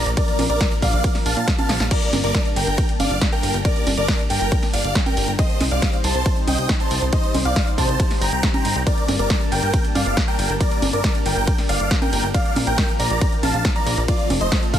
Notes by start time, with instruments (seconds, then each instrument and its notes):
Already playing: analog synth pad F3 A#3 D4 A#4
0.06 analog synth bass A#1, closed hi-hat
0.17 supersaw synth A#4 D5, grand piano D5, kick, closed hi-hat, ride
0.28 closed hi-hat
0.39 analog synth bass A#1, open hi-hat, high conga
0.50 analog synth bass A#1, supersaw synth A#4 D5, grand piano D5, closed hi-hat
0.61 kick, snare, closed hi-hat, ride
0.71 closed hi-hat
0.82 analog synth bass A#1, supersaw synth D5 F5, grand piano F5, kick, open hi-hat
0.93 analog synth bass A#1, closed hi-hat
1.04 kick, closed hi-hat, ride
1.15 snare, open hi-hat
1.26 analog synth bass A#1, supersaw synth F5 A5, grand piano A5, open hi-hat
1.37 analog synth bass A#2, closed hi-hat
1.48 kick, snare, closed hi-hat, ride
1.58 supersaw synth F5 A5, grand piano A5, closed hi-hat, high conga
1.69 analog synth bass A#1, snare, open hi-hat
1.80 analog synth bass A#1, snare, closed hi-hat
1.91 analog synth pad G3 D4 A5, supersaw synth A#4 D5, grand piano D5, kick, closed hi-hat, crash, ride
2.02 closed hi-hat
2.13 analog synth bass G1, snare, open hi-hat, high conga
2.24 analog synth bass G1, supersaw synth A#4 D5, grand piano D5, closed hi-hat
2.35 kick, snare, closed hi-hat, ride
2.45 closed hi-hat
2.56 analog synth bass G1, supersaw synth A#4 G5, grand piano G5, open hi-hat
2.67 analog synth bass G1, closed hi-hat
2.78 kick, closed hi-hat, ride
2.89 closed hi-hat
3.00 analog synth bass G1, supersaw synth D5 F5, grand piano F5, open hi-hat, high conga
3.11 analog synth bass G1, closed hi-hat
3.21 kick, snare, closed hi-hat, ride
3.32 supersaw synth A#4 G5, grand piano G5, closed hi-hat
3.43 analog synth bass G1, open hi-hat
3.54 analog synth bass G1, closed hi-hat
3.65 supersaw synth A#4 D5, grand piano D5, kick, closed hi-hat, ride
3.76 closed hi-hat
3.87 analog synth bass G1, open hi-hat, high conga
3.97 analog synth bass G1, supersaw synth A#4 D5, grand piano D5, closed hi-hat
4.08 kick, snare, closed hi-hat, ride
4.19 closed hi-hat
4.30 analog synth bass G1, supersaw synth A#4 G5, grand piano G5, open hi-hat
4.41 analog synth bass G1, closed hi-hat
4.52 kick, closed hi-hat, ride
4.63 snare, open hi-hat
4.73 analog synth bass G1, supersaw synth D5 F5, grand piano F5, open hi-hat
4.84 analog synth bass G1, closed hi-hat
4.95 kick, snare, closed hi-hat, ride
5.06 supersaw synth A#4 G5, grand piano G5, closed hi-hat, high conga
5.17 analog synth bass G1, open hi-hat
5.28 analog synth bass G1, closed hi-hat
5.39 analog synth pad C4 D#4 C5, supersaw synth C5 D#5, grand piano D#5, kick, closed hi-hat, ride
5.50 closed hi-hat
5.61 analog synth bass C2, snare, open hi-hat, high conga
5.71 analog synth bass C2, supersaw synth D5 F5, grand piano F5, closed hi-hat
5.82 kick, snare, closed hi-hat, ride
5.93 closed hi-hat
6.04 analog synth bass C2, supersaw synth C5 A5, grand piano A5, open hi-hat
6.15 analog synth bass C2, closed hi-hat
6.26 kick, closed hi-hat, ride
6.37 closed hi-hat
6.47 analog synth bass C2, supersaw synth D#5 G5, grand piano G5, open hi-hat, high conga
6.58 analog synth bass C2, closed hi-hat
6.69 kick, snare, closed hi-hat, ride
6.80 supersaw synth C5 A5, grand piano A5, closed hi-hat
6.91 analog synth bass C2, open hi-hat
7.02 analog synth bass C2, closed hi-hat
7.13 supersaw synth C5 D#5, grand piano D#5, kick, closed hi-hat, ride
7.24 closed hi-hat
7.34 analog synth bass C2, open hi-hat, high conga
7.45 analog synth bass C2, supersaw synth D5 F5, grand piano F5
7.56 kick, snare, closed hi-hat, ride
7.67 closed hi-hat
7.78 analog synth bass C2, supersaw synth C5 A5, grand piano A5, kick, open hi-hat
7.89 analog synth bass C2, closed hi-hat
8.00 kick, closed hi-hat, ride
8.11 snare, open hi-hat
8.21 analog synth bass G1, supersaw synth G5 A#5, grand piano A#5, open hi-hat
8.32 analog synth bass C2, closed hi-hat
8.43 kick, snare, closed hi-hat, ride
8.54 supersaw synth G5 A#5, grand piano A#5, closed hi-hat, high conga
8.65 analog synth bass G1, open hi-hat
8.76 analog synth bass C2, closed hi-hat
8.87 analog synth pad A#3 D4 A5, supersaw synth A#4 D5, grand piano D5, kick, closed hi-hat, ride
8.98 closed hi-hat
9.08 analog synth bass G1, snare, open hi-hat, high conga
9.19 analog synth bass G1, supersaw synth A#4 D5, grand piano D5, closed hi-hat
9.30 kick, snare, closed hi-hat, ride
9.41 closed hi-hat
9.52 analog synth bass G1, supersaw synth A#4 G5, grand piano G5, open hi-hat
9.63 analog synth bass G1, closed hi-hat
9.74 kick, closed hi-hat, ride
9.85 closed hi-hat
9.95 analog synth bass G1, supersaw synth D5 F5, grand piano F5, open hi-hat, high conga
10.06 analog synth bass G1, closed hi-hat
10.17 kick, snare, closed hi-hat, ride
10.28 supersaw synth A#4 G5, grand piano G5, closed hi-hat
10.39 analog synth bass G1, open hi-hat
10.50 analog synth bass G1, closed hi-hat
10.60 supersaw synth A#4 D5, grand piano D5, kick, closed hi-hat, ride
10.71 closed hi-hat
10.82 analog synth bass G1, open hi-hat, high conga
10.93 analog synth bass G1, supersaw synth A#4 D5, grand piano D5, closed hi-hat
11.04 kick, snare, closed hi-hat, ride
11.15 closed hi-hat
11.26 analog synth bass G1, supersaw synth A#4 G5, grand piano G5, open hi-hat
11.37 analog synth bass G1, closed hi-hat
11.47 kick, closed hi-hat, ride
11.58 snare, open hi-hat
11.69 analog synth bass G1, supersaw synth D5 F5, grand piano F5, open hi-hat
11.80 analog synth bass G1, closed hi-hat
11.91 kick, snare, closed hi-hat, ride
12.02 supersaw synth A#4 G5, grand piano G5, closed hi-hat, high conga
12.13 analog synth bass G1, open hi-hat
12.24 analog synth bass G1
12.34 analog synth pad F3 A#4, supersaw synth D5 F5, grand piano F5, kick, closed hi-hat, ride
12.45 closed hi-hat
12.56 analog synth bass A#1, snare, open hi-hat, high conga
12.67 analog synth bass A#1, supersaw synth A#4 G5, grand piano G5, closed hi-hat
12.78 kick, snare, closed hi-hat, ride
12.89 closed hi-hat
12.99 analog synth bass A#1, supersaw synth D5 A#5, grand piano A#5, open hi-hat
13.11 analog synth bass A#1, closed hi-hat
13.21 kick, closed hi-hat, ride
13.32 closed hi-hat
13.43 analog synth bass A#1, supersaw synth F5 A5, grand piano A5, open hi-hat, high conga
13.54 analog synth bass A#1, closed hi-hat
13.65 kick, snare, closed hi-hat, ride
13.76 supersaw synth D5 A#5, grand piano A#5, closed hi-hat
13.86 analog synth bass A#1, open hi-hat
13.97 analog synth bass A#1, closed hi-hat
14.08 analog synth pad A3 C4 A4, supersaw synth F4 D5, grand piano D5, kick, closed hi-hat, ride
14.19 closed hi-hat
14.30 analog synth bass F1, open hi-hat, high conga
14.41 analog synth bass F1, supersaw synth C5 D#5, grand piano D#5, closed hi-hat
14.52 kick, snare, closed hi-hat, ride
14.63 closed hi-hat
14.73 analog synth bass F1, supersaw synth A4 F5, grand piano F5, kick, open hi-hat